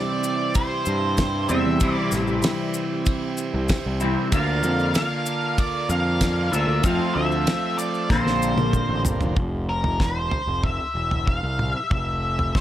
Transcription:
Already playing: clean electric guitar C3 E3 G3 C4 E4, transistor combo organ E4 G4 C5, lead electric guitar D5
0.24 maracas
0.54 lead electric guitar C5, kick, ride bell, maracas
0.86 picked electric bass G2, maracas
1.17 kick, snare, ride bell, maracas
1.49 picked electric bass E2, clean electric guitar C3 E3 G3 C4 E4, lead electric guitar E5, maracas
1.66 picked electric bass E2
1.80 clean electric guitar C3 E3 G3 C4 E4, picked electric bass C3, kick, ride bell, maracas
1.94 lead electric guitar D5
2.11 picked electric bass A1, snare, maracas
2.27 maracas
2.42 snare, ride bell, maracas
2.74 maracas
3.06 kick, ride bell, maracas
3.37 maracas
3.54 picked electric bass C2
3.68 kick, snare, ride bell, maracas
3.86 picked electric bass C2
4.00 clean electric guitar C3 E3 G3 C4 E4, maracas
4.32 picked electric bass D2, clean electric guitar D3 A#3 D4 F4, transistor combo organ F4 A#4 D5, lead electric guitar F5, kick, ride bell, maracas
4.63 picked electric bass F2, maracas
4.79 maracas
4.94 lead electric guitar F5, snare, ride bell, maracas
5.26 maracas
5.58 lead electric guitar D5, kick, ride bell, maracas
5.90 picked electric bass F2, lead electric guitar F5, maracas
6.21 kick, snare, ride bell, maracas
6.52 picked electric bass D2, clean electric guitar D3 A#3 D4 F4, lead electric guitar E5, maracas
6.68 picked electric bass D2
6.84 picked electric bass F2, clean electric guitar F3 A3 C4 F4, transistor combo organ F4 A4 C5, lead electric guitar F5, kick, ride bell, maracas
7.15 picked electric bass D2, lead electric guitar E5
7.32 maracas
7.47 snare, ride bell, maracas
7.78 lead electric guitar D5, maracas
7.94 maracas
8.10 picked electric bass A#1, clean electric guitar A#2 D3 A#3 C4 F4, transistor combo organ D4 A#4 C5, lead electric guitar C5, kick, snare, maracas
8.27 snare
8.42 maracas
8.57 picked electric bass A#1, high tom, maracas
8.73 kick, mid tom, maracas
8.89 picked electric bass A1
9.05 picked electric bass G1, floor tom, maracas
9.20 picked electric bass F1, floor tom, maracas
9.36 picked electric bass F1, kick, floor tom
9.69 lead electric guitar A#4
9.84 floor tom
10.00 picked electric bass E1, lead electric guitar C5, kick, snare
10.31 floor tom
10.47 picked electric bass F1
10.64 lead electric guitar E5, kick, floor tom
10.95 picked electric bass E1
11.11 floor tom
11.27 lead electric guitar F5, kick
11.43 picked electric bass C2
11.59 mid tom
11.74 lead electric guitar E5
11.91 picked electric bass F1, lead electric guitar E5, kick, floor tom
12.39 floor tom
12.55 picked electric bass E1, lead electric guitar D5, kick, snare

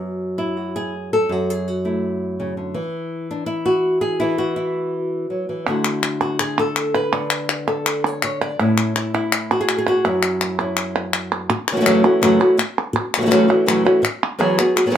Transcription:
Already playing: nylon-string guitar F#2
0.38 nylon-string guitar E4
0.57 nylon-string guitar F#4
0.76 nylon-string guitar G#4
1.13 nylon-string guitar A4
1.29 nylon-string guitar F#2 F#4
1.50 nylon-string guitar G#4
1.68 nylon-string guitar F#4
1.85 nylon-string guitar A3 E4
2.40 nylon-string guitar C#3
2.57 nylon-string guitar D3
2.74 nylon-string guitar E3
3.31 nylon-string guitar D4
3.46 nylon-string guitar E4
3.66 nylon-string guitar F#4
4.01 nylon-string guitar G#4
4.20 nylon-string guitar E3 E4
4.38 nylon-string guitar F#4
4.56 nylon-string guitar E4
5.30 nylon-string guitar F#3
5.49 nylon-string guitar E3
5.68 nylon-string guitar D3 A3 E4 F#4
5.84 clap
6.03 clap
6.21 nylon-string guitar F#4, clap
6.39 nylon-string guitar G#4, clap
6.59 nylon-string guitar A4
6.76 clap
6.95 nylon-string guitar B4, clap
7.13 nylon-string guitar D3
7.30 clap
7.49 clap
7.68 nylon-string guitar A4, clap
7.86 nylon-string guitar B4, clap
8.06 nylon-string guitar C#5
8.22 nylon-string guitar C#5, clap
8.42 nylon-string guitar D5
8.59 nylon-string guitar A2 C#4 E4
8.78 clap
8.96 nylon-string guitar E4, clap
9.14 nylon-string guitar E4, clap
9.32 clap
9.51 nylon-string guitar F#4
9.61 nylon-string guitar G#4
9.69 clap
9.78 nylon-string guitar G#4
9.88 nylon-string guitar F#4
10.05 nylon-string guitar F#2 C#4 E4
10.23 clap
10.41 nylon-string guitar E4, clap
10.60 nylon-string guitar C#4 E4
10.77 clap
10.96 clap
11.13 clap
11.50 muted nylon-string guitar stroke
11.68 nylon-string guitar C#3, clap
11.72 nylon-string guitar E3 A3 C#4 F#4
11.76 nylon-string guitar C#3 E3 A3 C#4 F#4
11.81 nylon-string guitar C#3 E3 A3 C#4 F#4
11.86 nylon-string guitar F#2 C#3 E3 A3 C#4 F#4, clap
12.04 nylon-string guitar E3 A3 C#4 F#4
12.22 nylon-string guitar F#2 C#3 E3 A3 C#4 F#4, clap
12.40 nylon-string guitar E3 A3 C#4 F#4
12.57 muted nylon-string guitar stroke, clap
12.78 clap
12.93 muted nylon-string guitar stroke
13.14 nylon-string guitar C#3 E3 A3 C#4, clap
13.19 nylon-string guitar C#3 E3 A3 F#4
13.23 nylon-string guitar C#3 E3 A3 C#4 F#4
13.27 nylon-string guitar F#2 C#3 C#4 F#4
13.31 nylon-string guitar E3 A3 C#4 F#4, clap
13.48 nylon-string guitar E3 A3 C#4 F#4, clap
13.66 nylon-string guitar F#2 C#3 E3 A3 C#4 F#4, clap
13.85 nylon-string guitar E3 A3 C#4 F#4, clap
14.02 muted nylon-string guitar stroke, clap
14.39 nylon-string guitar E3 F#3 B3 F#4 G#4
14.58 nylon-string guitar B3 F#4 G#4, clap
14.76 nylon-string guitar B3 F#4 G#4, clap
14.86 nylon-string guitar F#3 B3 F#4 G#4
14.90 nylon-string guitar F#3 B3 F#4 G#4

